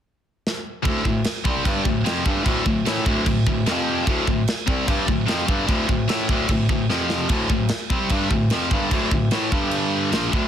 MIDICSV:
0, 0, Header, 1, 4, 480
1, 0, Start_track
1, 0, Key_signature, -1, "minor"
1, 0, Tempo, 403497
1, 1008, Time_signature, 4, 2, 24, 8
1, 12466, End_track
2, 0, Start_track
2, 0, Title_t, "Distorted electric guitar"
2, 0, Program_c, 0, 30
2, 983, Note_on_c, 0, 38, 92
2, 995, Note_on_c, 0, 45, 90
2, 995, Note_on_c, 0, 50, 106
2, 1227, Note_off_c, 0, 38, 0
2, 1233, Note_off_c, 0, 45, 0
2, 1233, Note_off_c, 0, 50, 0
2, 1242, Note_on_c, 0, 38, 72
2, 1245, Note_on_c, 0, 45, 70
2, 1436, Note_off_c, 0, 38, 0
2, 1437, Note_off_c, 0, 45, 0
2, 1716, Note_on_c, 0, 48, 92
2, 1724, Note_on_c, 0, 55, 86
2, 1731, Note_on_c, 0, 60, 92
2, 1942, Note_off_c, 0, 48, 0
2, 1946, Note_on_c, 0, 43, 90
2, 1951, Note_off_c, 0, 55, 0
2, 1958, Note_on_c, 0, 50, 91
2, 1960, Note_off_c, 0, 60, 0
2, 1965, Note_on_c, 0, 55, 106
2, 2188, Note_off_c, 0, 43, 0
2, 2194, Note_off_c, 0, 50, 0
2, 2194, Note_on_c, 0, 38, 65
2, 2197, Note_off_c, 0, 55, 0
2, 2199, Note_on_c, 0, 45, 74
2, 2390, Note_off_c, 0, 38, 0
2, 2393, Note_off_c, 0, 45, 0
2, 2429, Note_on_c, 0, 41, 102
2, 2437, Note_on_c, 0, 48, 96
2, 2437, Note_on_c, 0, 53, 112
2, 2664, Note_off_c, 0, 41, 0
2, 2669, Note_on_c, 0, 43, 84
2, 2671, Note_off_c, 0, 48, 0
2, 2672, Note_off_c, 0, 53, 0
2, 2676, Note_on_c, 0, 50, 82
2, 2679, Note_on_c, 0, 55, 91
2, 2892, Note_off_c, 0, 43, 0
2, 2897, Note_off_c, 0, 50, 0
2, 2897, Note_on_c, 0, 38, 90
2, 2902, Note_on_c, 0, 45, 87
2, 2907, Note_off_c, 0, 55, 0
2, 2912, Note_on_c, 0, 50, 104
2, 3142, Note_off_c, 0, 38, 0
2, 3144, Note_off_c, 0, 45, 0
2, 3149, Note_off_c, 0, 50, 0
2, 3158, Note_on_c, 0, 38, 74
2, 3163, Note_on_c, 0, 45, 77
2, 3351, Note_off_c, 0, 38, 0
2, 3354, Note_off_c, 0, 45, 0
2, 3396, Note_on_c, 0, 45, 111
2, 3407, Note_on_c, 0, 57, 104
2, 3409, Note_on_c, 0, 52, 104
2, 3629, Note_off_c, 0, 45, 0
2, 3634, Note_on_c, 0, 38, 88
2, 3637, Note_off_c, 0, 57, 0
2, 3638, Note_off_c, 0, 52, 0
2, 3643, Note_on_c, 0, 45, 89
2, 3649, Note_on_c, 0, 50, 98
2, 3870, Note_off_c, 0, 38, 0
2, 3875, Note_off_c, 0, 45, 0
2, 3878, Note_off_c, 0, 50, 0
2, 3891, Note_on_c, 0, 38, 65
2, 3892, Note_on_c, 0, 45, 66
2, 4078, Note_off_c, 0, 38, 0
2, 4078, Note_off_c, 0, 45, 0
2, 4123, Note_on_c, 0, 38, 74
2, 4130, Note_on_c, 0, 45, 74
2, 4313, Note_off_c, 0, 38, 0
2, 4317, Note_off_c, 0, 45, 0
2, 4356, Note_on_c, 0, 41, 101
2, 4365, Note_on_c, 0, 48, 95
2, 4376, Note_on_c, 0, 53, 110
2, 4820, Note_off_c, 0, 41, 0
2, 4825, Note_on_c, 0, 38, 79
2, 4826, Note_off_c, 0, 48, 0
2, 4831, Note_on_c, 0, 45, 94
2, 4835, Note_off_c, 0, 53, 0
2, 4840, Note_on_c, 0, 50, 104
2, 5059, Note_off_c, 0, 38, 0
2, 5059, Note_off_c, 0, 45, 0
2, 5073, Note_off_c, 0, 50, 0
2, 5073, Note_on_c, 0, 38, 74
2, 5074, Note_on_c, 0, 45, 74
2, 5269, Note_off_c, 0, 38, 0
2, 5269, Note_off_c, 0, 45, 0
2, 5548, Note_on_c, 0, 48, 85
2, 5560, Note_on_c, 0, 55, 101
2, 5562, Note_on_c, 0, 60, 109
2, 5777, Note_off_c, 0, 48, 0
2, 5782, Note_on_c, 0, 43, 95
2, 5784, Note_off_c, 0, 55, 0
2, 5793, Note_off_c, 0, 60, 0
2, 5794, Note_on_c, 0, 50, 101
2, 5798, Note_on_c, 0, 55, 106
2, 6013, Note_off_c, 0, 43, 0
2, 6018, Note_on_c, 0, 38, 71
2, 6023, Note_off_c, 0, 50, 0
2, 6028, Note_on_c, 0, 45, 78
2, 6033, Note_off_c, 0, 55, 0
2, 6222, Note_off_c, 0, 38, 0
2, 6227, Note_off_c, 0, 45, 0
2, 6259, Note_on_c, 0, 41, 102
2, 6274, Note_on_c, 0, 48, 91
2, 6277, Note_on_c, 0, 53, 98
2, 6492, Note_off_c, 0, 41, 0
2, 6496, Note_on_c, 0, 43, 74
2, 6502, Note_off_c, 0, 48, 0
2, 6506, Note_off_c, 0, 53, 0
2, 6506, Note_on_c, 0, 50, 80
2, 6510, Note_on_c, 0, 55, 90
2, 6729, Note_off_c, 0, 43, 0
2, 6733, Note_off_c, 0, 50, 0
2, 6734, Note_on_c, 0, 38, 96
2, 6737, Note_on_c, 0, 45, 89
2, 6744, Note_off_c, 0, 55, 0
2, 6749, Note_on_c, 0, 50, 96
2, 6973, Note_off_c, 0, 38, 0
2, 6983, Note_off_c, 0, 45, 0
2, 6987, Note_on_c, 0, 38, 67
2, 6989, Note_off_c, 0, 50, 0
2, 6995, Note_on_c, 0, 45, 80
2, 7187, Note_off_c, 0, 38, 0
2, 7191, Note_off_c, 0, 45, 0
2, 7229, Note_on_c, 0, 45, 107
2, 7239, Note_on_c, 0, 52, 106
2, 7245, Note_on_c, 0, 57, 109
2, 7469, Note_off_c, 0, 45, 0
2, 7474, Note_off_c, 0, 52, 0
2, 7477, Note_off_c, 0, 57, 0
2, 7489, Note_on_c, 0, 38, 82
2, 7497, Note_on_c, 0, 45, 94
2, 7503, Note_on_c, 0, 50, 103
2, 7720, Note_off_c, 0, 38, 0
2, 7724, Note_off_c, 0, 45, 0
2, 7727, Note_off_c, 0, 50, 0
2, 7739, Note_on_c, 0, 45, 77
2, 7740, Note_on_c, 0, 38, 56
2, 7924, Note_off_c, 0, 45, 0
2, 7925, Note_off_c, 0, 38, 0
2, 7960, Note_on_c, 0, 38, 69
2, 7973, Note_on_c, 0, 45, 75
2, 8155, Note_off_c, 0, 38, 0
2, 8161, Note_off_c, 0, 45, 0
2, 8204, Note_on_c, 0, 41, 85
2, 8206, Note_on_c, 0, 48, 108
2, 8210, Note_on_c, 0, 53, 107
2, 8666, Note_off_c, 0, 41, 0
2, 8670, Note_on_c, 0, 38, 82
2, 8680, Note_off_c, 0, 48, 0
2, 8680, Note_off_c, 0, 53, 0
2, 8685, Note_on_c, 0, 50, 89
2, 8689, Note_on_c, 0, 45, 91
2, 8911, Note_off_c, 0, 45, 0
2, 8912, Note_off_c, 0, 38, 0
2, 8919, Note_off_c, 0, 50, 0
2, 8925, Note_on_c, 0, 45, 80
2, 8926, Note_on_c, 0, 38, 64
2, 9119, Note_off_c, 0, 38, 0
2, 9119, Note_off_c, 0, 45, 0
2, 9398, Note_on_c, 0, 48, 84
2, 9403, Note_on_c, 0, 55, 95
2, 9414, Note_on_c, 0, 60, 98
2, 9631, Note_off_c, 0, 48, 0
2, 9636, Note_on_c, 0, 43, 94
2, 9639, Note_off_c, 0, 55, 0
2, 9644, Note_off_c, 0, 60, 0
2, 9650, Note_on_c, 0, 50, 98
2, 9652, Note_on_c, 0, 55, 104
2, 9875, Note_off_c, 0, 43, 0
2, 9882, Note_on_c, 0, 38, 65
2, 9883, Note_off_c, 0, 50, 0
2, 9884, Note_off_c, 0, 55, 0
2, 9889, Note_on_c, 0, 45, 80
2, 10078, Note_off_c, 0, 38, 0
2, 10081, Note_off_c, 0, 45, 0
2, 10130, Note_on_c, 0, 41, 87
2, 10140, Note_on_c, 0, 48, 99
2, 10142, Note_on_c, 0, 53, 106
2, 10363, Note_off_c, 0, 41, 0
2, 10368, Note_off_c, 0, 48, 0
2, 10369, Note_off_c, 0, 53, 0
2, 10373, Note_on_c, 0, 43, 91
2, 10383, Note_on_c, 0, 50, 95
2, 10387, Note_on_c, 0, 55, 92
2, 10592, Note_off_c, 0, 43, 0
2, 10597, Note_on_c, 0, 38, 86
2, 10599, Note_off_c, 0, 50, 0
2, 10609, Note_off_c, 0, 55, 0
2, 10611, Note_on_c, 0, 45, 87
2, 10613, Note_on_c, 0, 50, 99
2, 10833, Note_off_c, 0, 38, 0
2, 10836, Note_off_c, 0, 45, 0
2, 10845, Note_off_c, 0, 50, 0
2, 10848, Note_on_c, 0, 38, 74
2, 10850, Note_on_c, 0, 45, 71
2, 11042, Note_off_c, 0, 38, 0
2, 11043, Note_off_c, 0, 45, 0
2, 11078, Note_on_c, 0, 45, 90
2, 11089, Note_on_c, 0, 52, 112
2, 11094, Note_on_c, 0, 57, 100
2, 11314, Note_off_c, 0, 45, 0
2, 11318, Note_on_c, 0, 43, 82
2, 11323, Note_off_c, 0, 52, 0
2, 11326, Note_off_c, 0, 57, 0
2, 11328, Note_on_c, 0, 50, 102
2, 11333, Note_on_c, 0, 55, 102
2, 12029, Note_off_c, 0, 43, 0
2, 12034, Note_on_c, 0, 46, 96
2, 12039, Note_off_c, 0, 50, 0
2, 12041, Note_off_c, 0, 55, 0
2, 12044, Note_on_c, 0, 53, 104
2, 12045, Note_on_c, 0, 58, 99
2, 12260, Note_off_c, 0, 46, 0
2, 12264, Note_on_c, 0, 38, 78
2, 12274, Note_off_c, 0, 58, 0
2, 12275, Note_off_c, 0, 53, 0
2, 12279, Note_on_c, 0, 50, 85
2, 12280, Note_on_c, 0, 45, 93
2, 12466, Note_off_c, 0, 38, 0
2, 12466, Note_off_c, 0, 45, 0
2, 12466, Note_off_c, 0, 50, 0
2, 12466, End_track
3, 0, Start_track
3, 0, Title_t, "Bass clarinet"
3, 0, Program_c, 1, 71
3, 1015, Note_on_c, 1, 38, 94
3, 1234, Note_off_c, 1, 38, 0
3, 1252, Note_on_c, 1, 38, 83
3, 1472, Note_off_c, 1, 38, 0
3, 1725, Note_on_c, 1, 36, 95
3, 1948, Note_off_c, 1, 36, 0
3, 1967, Note_on_c, 1, 43, 99
3, 2189, Note_off_c, 1, 43, 0
3, 2202, Note_on_c, 1, 38, 83
3, 2425, Note_off_c, 1, 38, 0
3, 2444, Note_on_c, 1, 41, 96
3, 2666, Note_off_c, 1, 41, 0
3, 2690, Note_on_c, 1, 43, 97
3, 2909, Note_off_c, 1, 43, 0
3, 2922, Note_on_c, 1, 38, 91
3, 3145, Note_off_c, 1, 38, 0
3, 3163, Note_on_c, 1, 38, 78
3, 3385, Note_off_c, 1, 38, 0
3, 3416, Note_on_c, 1, 45, 95
3, 3632, Note_off_c, 1, 45, 0
3, 3646, Note_on_c, 1, 38, 97
3, 3867, Note_off_c, 1, 38, 0
3, 3883, Note_on_c, 1, 38, 80
3, 4105, Note_off_c, 1, 38, 0
3, 4121, Note_on_c, 1, 38, 86
3, 4344, Note_off_c, 1, 38, 0
3, 4375, Note_on_c, 1, 41, 92
3, 4815, Note_off_c, 1, 41, 0
3, 4841, Note_on_c, 1, 38, 95
3, 5064, Note_off_c, 1, 38, 0
3, 5082, Note_on_c, 1, 38, 80
3, 5305, Note_off_c, 1, 38, 0
3, 5558, Note_on_c, 1, 36, 97
3, 5783, Note_off_c, 1, 36, 0
3, 5807, Note_on_c, 1, 43, 104
3, 6028, Note_off_c, 1, 43, 0
3, 6051, Note_on_c, 1, 38, 77
3, 6270, Note_off_c, 1, 38, 0
3, 6278, Note_on_c, 1, 41, 94
3, 6503, Note_off_c, 1, 41, 0
3, 6523, Note_on_c, 1, 43, 103
3, 6746, Note_off_c, 1, 43, 0
3, 6757, Note_on_c, 1, 38, 97
3, 6983, Note_off_c, 1, 38, 0
3, 7004, Note_on_c, 1, 38, 89
3, 7227, Note_off_c, 1, 38, 0
3, 7250, Note_on_c, 1, 45, 93
3, 7470, Note_off_c, 1, 45, 0
3, 7486, Note_on_c, 1, 38, 91
3, 7709, Note_off_c, 1, 38, 0
3, 7714, Note_on_c, 1, 38, 88
3, 7943, Note_off_c, 1, 38, 0
3, 7963, Note_on_c, 1, 38, 82
3, 8176, Note_off_c, 1, 38, 0
3, 8183, Note_on_c, 1, 41, 89
3, 8641, Note_off_c, 1, 41, 0
3, 8679, Note_on_c, 1, 38, 92
3, 8906, Note_off_c, 1, 38, 0
3, 8919, Note_on_c, 1, 38, 83
3, 9146, Note_off_c, 1, 38, 0
3, 9635, Note_on_c, 1, 43, 101
3, 9865, Note_off_c, 1, 43, 0
3, 9876, Note_on_c, 1, 38, 86
3, 10106, Note_off_c, 1, 38, 0
3, 10125, Note_on_c, 1, 41, 88
3, 10351, Note_off_c, 1, 41, 0
3, 10367, Note_on_c, 1, 43, 99
3, 10592, Note_off_c, 1, 43, 0
3, 10608, Note_on_c, 1, 38, 100
3, 10833, Note_off_c, 1, 38, 0
3, 10846, Note_on_c, 1, 38, 87
3, 11072, Note_off_c, 1, 38, 0
3, 11081, Note_on_c, 1, 45, 92
3, 11309, Note_off_c, 1, 45, 0
3, 11328, Note_on_c, 1, 43, 97
3, 12003, Note_off_c, 1, 43, 0
3, 12056, Note_on_c, 1, 34, 93
3, 12278, Note_off_c, 1, 34, 0
3, 12288, Note_on_c, 1, 38, 99
3, 12466, Note_off_c, 1, 38, 0
3, 12466, End_track
4, 0, Start_track
4, 0, Title_t, "Drums"
4, 555, Note_on_c, 9, 38, 64
4, 674, Note_off_c, 9, 38, 0
4, 1014, Note_on_c, 9, 49, 56
4, 1015, Note_on_c, 9, 36, 108
4, 1133, Note_off_c, 9, 49, 0
4, 1134, Note_off_c, 9, 36, 0
4, 1251, Note_on_c, 9, 36, 85
4, 1370, Note_off_c, 9, 36, 0
4, 1480, Note_on_c, 9, 49, 61
4, 1492, Note_on_c, 9, 38, 111
4, 1599, Note_off_c, 9, 49, 0
4, 1610, Note_off_c, 9, 38, 0
4, 1726, Note_on_c, 9, 36, 99
4, 1845, Note_off_c, 9, 36, 0
4, 1967, Note_on_c, 9, 36, 103
4, 1976, Note_on_c, 9, 49, 59
4, 2086, Note_off_c, 9, 36, 0
4, 2095, Note_off_c, 9, 49, 0
4, 2204, Note_on_c, 9, 36, 86
4, 2323, Note_off_c, 9, 36, 0
4, 2451, Note_on_c, 9, 49, 61
4, 2462, Note_on_c, 9, 38, 102
4, 2570, Note_off_c, 9, 49, 0
4, 2581, Note_off_c, 9, 38, 0
4, 2685, Note_on_c, 9, 36, 100
4, 2804, Note_off_c, 9, 36, 0
4, 2924, Note_on_c, 9, 36, 103
4, 2926, Note_on_c, 9, 49, 59
4, 3043, Note_off_c, 9, 36, 0
4, 3045, Note_off_c, 9, 49, 0
4, 3162, Note_on_c, 9, 36, 90
4, 3281, Note_off_c, 9, 36, 0
4, 3404, Note_on_c, 9, 49, 58
4, 3416, Note_on_c, 9, 38, 116
4, 3523, Note_off_c, 9, 49, 0
4, 3535, Note_off_c, 9, 38, 0
4, 3640, Note_on_c, 9, 36, 106
4, 3759, Note_off_c, 9, 36, 0
4, 3880, Note_on_c, 9, 49, 58
4, 3881, Note_on_c, 9, 36, 89
4, 3999, Note_off_c, 9, 49, 0
4, 4000, Note_off_c, 9, 36, 0
4, 4123, Note_on_c, 9, 36, 86
4, 4242, Note_off_c, 9, 36, 0
4, 4359, Note_on_c, 9, 49, 53
4, 4370, Note_on_c, 9, 38, 106
4, 4478, Note_off_c, 9, 49, 0
4, 4489, Note_off_c, 9, 38, 0
4, 4842, Note_on_c, 9, 36, 98
4, 4843, Note_on_c, 9, 49, 58
4, 4961, Note_off_c, 9, 36, 0
4, 4962, Note_off_c, 9, 49, 0
4, 5085, Note_on_c, 9, 36, 88
4, 5204, Note_off_c, 9, 36, 0
4, 5324, Note_on_c, 9, 49, 64
4, 5336, Note_on_c, 9, 38, 117
4, 5443, Note_off_c, 9, 49, 0
4, 5455, Note_off_c, 9, 38, 0
4, 5563, Note_on_c, 9, 36, 104
4, 5682, Note_off_c, 9, 36, 0
4, 5806, Note_on_c, 9, 36, 106
4, 5812, Note_on_c, 9, 49, 60
4, 5925, Note_off_c, 9, 36, 0
4, 5931, Note_off_c, 9, 49, 0
4, 6045, Note_on_c, 9, 36, 86
4, 6164, Note_off_c, 9, 36, 0
4, 6283, Note_on_c, 9, 49, 60
4, 6294, Note_on_c, 9, 38, 104
4, 6401, Note_off_c, 9, 49, 0
4, 6413, Note_off_c, 9, 38, 0
4, 6525, Note_on_c, 9, 36, 110
4, 6644, Note_off_c, 9, 36, 0
4, 6764, Note_on_c, 9, 36, 105
4, 6765, Note_on_c, 9, 49, 61
4, 6883, Note_off_c, 9, 36, 0
4, 6884, Note_off_c, 9, 49, 0
4, 7006, Note_on_c, 9, 36, 91
4, 7125, Note_off_c, 9, 36, 0
4, 7244, Note_on_c, 9, 49, 60
4, 7256, Note_on_c, 9, 38, 107
4, 7363, Note_off_c, 9, 49, 0
4, 7375, Note_off_c, 9, 38, 0
4, 7482, Note_on_c, 9, 36, 100
4, 7601, Note_off_c, 9, 36, 0
4, 7714, Note_on_c, 9, 49, 60
4, 7720, Note_on_c, 9, 36, 89
4, 7833, Note_off_c, 9, 49, 0
4, 7839, Note_off_c, 9, 36, 0
4, 7961, Note_on_c, 9, 36, 96
4, 8080, Note_off_c, 9, 36, 0
4, 8209, Note_on_c, 9, 38, 57
4, 8328, Note_off_c, 9, 38, 0
4, 8446, Note_on_c, 9, 38, 87
4, 8565, Note_off_c, 9, 38, 0
4, 8672, Note_on_c, 9, 49, 59
4, 8680, Note_on_c, 9, 36, 104
4, 8791, Note_off_c, 9, 49, 0
4, 8799, Note_off_c, 9, 36, 0
4, 8918, Note_on_c, 9, 36, 93
4, 9037, Note_off_c, 9, 36, 0
4, 9143, Note_on_c, 9, 49, 57
4, 9155, Note_on_c, 9, 38, 115
4, 9262, Note_off_c, 9, 49, 0
4, 9274, Note_off_c, 9, 38, 0
4, 9400, Note_on_c, 9, 36, 112
4, 9519, Note_off_c, 9, 36, 0
4, 9629, Note_on_c, 9, 49, 59
4, 9639, Note_on_c, 9, 36, 99
4, 9748, Note_off_c, 9, 49, 0
4, 9758, Note_off_c, 9, 36, 0
4, 9881, Note_on_c, 9, 36, 91
4, 10000, Note_off_c, 9, 36, 0
4, 10112, Note_on_c, 9, 49, 55
4, 10124, Note_on_c, 9, 38, 109
4, 10231, Note_off_c, 9, 49, 0
4, 10243, Note_off_c, 9, 38, 0
4, 10362, Note_on_c, 9, 36, 102
4, 10481, Note_off_c, 9, 36, 0
4, 10602, Note_on_c, 9, 36, 101
4, 10602, Note_on_c, 9, 49, 60
4, 10721, Note_off_c, 9, 36, 0
4, 10721, Note_off_c, 9, 49, 0
4, 10842, Note_on_c, 9, 36, 94
4, 10961, Note_off_c, 9, 36, 0
4, 11074, Note_on_c, 9, 49, 62
4, 11086, Note_on_c, 9, 38, 115
4, 11193, Note_off_c, 9, 49, 0
4, 11204, Note_off_c, 9, 38, 0
4, 11325, Note_on_c, 9, 36, 97
4, 11444, Note_off_c, 9, 36, 0
4, 11554, Note_on_c, 9, 49, 62
4, 11673, Note_off_c, 9, 49, 0
4, 12044, Note_on_c, 9, 49, 55
4, 12056, Note_on_c, 9, 38, 109
4, 12163, Note_off_c, 9, 49, 0
4, 12175, Note_off_c, 9, 38, 0
4, 12291, Note_on_c, 9, 36, 105
4, 12410, Note_off_c, 9, 36, 0
4, 12466, End_track
0, 0, End_of_file